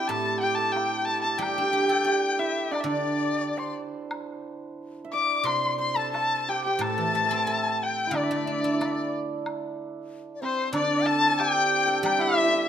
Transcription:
Already playing: hammered dulcimer C4 D4 E4 G4, dizi G5
0.08 guzheng A2, hammered dulcimer A4, erhu A5, dizi A5, high woodblock
0.40 hammered dulcimer G4, erhu G5, dizi G5
0.55 hammered dulcimer A4, erhu A5, dizi A5
0.72 hammered dulcimer G4, erhu G5, dizi G5
0.76 high woodblock, low woodblock
1.05 hammered dulcimer A4, erhu A5
1.22 hammered dulcimer A4, erhu A5, dizi A5
1.38 guzheng G3, hammered dulcimer G4, erhu G5
1.42 dizi G5, high woodblock
1.46 hammered dulcimer G4
1.55 guzheng D4, hammered dulcimer G4
1.62 hammered dulcimer G4
1.70 hammered dulcimer G4, guzheng G4
1.79 hammered dulcimer G4
1.85 hammered dulcimer G4
1.89 hammered dulcimer G4, guzheng A4
2.04 hammered dulcimer G4, guzheng D5, low woodblock
2.39 hammered dulcimer E4, erhu E5
2.71 hammered dulcimer D4, erhu D5, dizi D5
2.75 high woodblock
2.80 guzheng D3, erhu D5 E5
2.86 hammered dulcimer D4, dizi D5
3.57 hammered dulcimer C5, dizi C6
4.11 high woodblock
5.04 hammered dulcimer E5
5.12 hammered dulcimer D5, dizi D6, erhu D6
5.44 guzheng C3, hammered dulcimer C5, erhu C6, dizi C6, high woodblock
5.78 hammered dulcimer C5, dizi C6, erhu C6
5.96 hammered dulcimer A4, dizi A5, erhu A5
6.12 hammered dulcimer A4, erhu A5, dizi A5, high woodblock, low woodblock
6.49 hammered dulcimer G4, erhu G5, dizi G5
6.64 hammered dulcimer G4, erhu G5, dizi G5
6.79 guzheng A2, hammered dulcimer A4, erhu A5, high woodblock
6.84 dizi A5
6.90 hammered dulcimer A4
6.97 guzheng E3, hammered dulcimer A4
7.05 hammered dulcimer A4
7.11 guzheng A3, hammered dulcimer A4
7.19 hammered dulcimer A4
7.25 hammered dulcimer A4
7.31 guzheng C4, hammered dulcimer A4
7.47 guzheng E4, hammered dulcimer A4, dizi A5
7.83 dizi G5, erhu G5
8.07 hammered dulcimer E4
8.11 guzheng D3, hammered dulcimer D4, high woodblock
8.16 erhu D5, dizi D5
8.24 dizi E5
8.31 guzheng A3, dizi D5
8.37 dizi E5
8.46 guzheng D4, dizi D5
8.52 dizi E5
8.61 guzheng E4, dizi D5
8.74 hammered dulcimer E4
8.80 hammered dulcimer D4, guzheng A4, dizi D5, high woodblock, low woodblock
8.85 dizi E5
8.92 dizi D5
9.46 high woodblock
10.35 dizi D5
10.41 hammered dulcimer C4, dizi C5, erhu C5
10.72 guzheng D3, hammered dulcimer D4, dizi D5, erhu D5, high woodblock
11.05 hammered dulcimer A4, dizi A5, erhu A5
11.31 hammered dulcimer A4
11.38 hammered dulcimer G4, erhu G5, dizi G5, high woodblock, low woodblock
11.87 hammered dulcimer A4
12.02 guzheng G3, hammered dulcimer G4, dizi G5, erhu G5, high woodblock
12.18 hammered dulcimer E4, dizi E5, erhu E5
12.27 hammered dulcimer E4
12.34 hammered dulcimer E4
12.41 hammered dulcimer E4
12.48 hammered dulcimer E4
12.54 hammered dulcimer E4

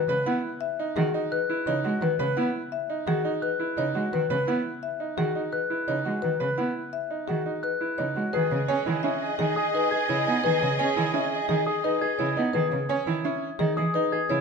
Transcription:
Already playing: marimba B4
0.08 cello C#3, grand piano B4
0.26 cello B3, grand piano E4, marimba F#5
0.61 marimba E5
0.79 grand piano D#4
0.96 cello D#3, grand piano F#4, marimba G#4
1.14 grand piano D#4
1.32 marimba B4, glockenspiel F#6
1.50 grand piano E4
1.67 cello C#3, grand piano D#4, marimba C#5
1.84 cello G#3, grand piano F#4
2.01 cello D#3, marimba B4
2.19 cello C#3, grand piano B4
2.37 cello B3, grand piano E4, marimba F#5
2.72 marimba E5
2.90 grand piano D#4
3.07 cello D#3, grand piano F#4, marimba G#4
3.25 grand piano D#4
3.42 marimba B4, glockenspiel F#6
3.60 grand piano E4
3.77 cello C#3, grand piano D#4, marimba C#5
3.95 cello G#3, grand piano F#4
4.13 cello D#3, marimba B4
4.30 cello C#3, grand piano B4
4.47 cello B3, grand piano E4, marimba F#5
4.83 marimba E5
5.00 grand piano D#4
5.18 cello D#3, grand piano F#4, marimba G#4
5.35 grand piano D#4
5.53 marimba B4, glockenspiel F#6
5.70 grand piano E4
5.88 cello C#3, grand piano D#4, marimba C#5
6.05 cello G#3, grand piano F#4
6.22 cello D#3, marimba B4
6.40 cello C#3, grand piano B4
6.58 cello B3, grand piano E4, marimba F#5
6.93 marimba E5
7.10 grand piano D#4
7.28 cello D#3, grand piano F#4, marimba G#4
7.46 grand piano D#4
7.63 marimba B4, glockenspiel F#6
7.81 grand piano E4
7.98 cello C#3, grand piano D#4, marimba C#5
8.16 cello G#3, grand piano F#4
8.33 cello D#3, grand piano G#4, string section G#4 D#5, soprano saxophone G#4, marimba B4
8.51 cello C#3, soprano saxophone G#4
8.68 cello C#4, soprano saxophone G#4, grand piano C#5, marimba G#5
8.86 cello D#3, grand piano E4, soprano saxophone G#4
9.03 grand piano C#4, soprano saxophone G#4, marimba E5
9.21 soprano saxophone G#4
9.39 cello D#3, grand piano D#4, marimba G#4, soprano saxophone G#4
9.56 soprano saxophone G#4, grand piano G#4, glockenspiel D#6
9.74 grand piano D#4, soprano saxophone G#4, marimba B4
9.91 soprano saxophone G#4, grand piano G#4, glockenspiel G#6
10.09 cello C#3, grand piano E4, soprano saxophone G#4, marimba C#5
10.26 cello B3, grand piano D#4, soprano saxophone G#4
10.44 cello D#3, soprano saxophone G#4, grand piano G#4, marimba B4
10.61 cello C#3, soprano saxophone G#4
10.79 cello C#4, soprano saxophone G#4, grand piano C#5, marimba G#5
10.96 cello D#3, grand piano E4, soprano saxophone G#4
11.14 grand piano C#4, soprano saxophone G#4, marimba E5
11.31 soprano saxophone G#4
11.49 cello D#3, grand piano D#4, soprano saxophone G#4, marimba G#4
11.66 soprano saxophone G#4, grand piano G#4, glockenspiel D#6
11.84 grand piano D#4, soprano saxophone G#4, marimba B4
12.01 soprano saxophone G#4, grand piano G#4, glockenspiel G#6
12.19 cello C#3, grand piano E4, soprano saxophone G#4, marimba C#5
12.37 cello B3, grand piano D#4
12.53 cello D#3, grand piano G#4, marimba B4
12.72 cello C#3
12.89 cello C#4, grand piano C#5, marimba G#5
13.07 cello D#3, grand piano E4
13.24 grand piano C#4, marimba E5
13.59 cello D#3, grand piano D#4, marimba G#4
13.77 cello E3, grand piano G#4, glockenspiel D#6
13.94 grand piano D#4, marimba B4
14.12 grand piano G#4, glockenspiel G#6
14.30 cello C#3, grand piano E4, marimba C#5

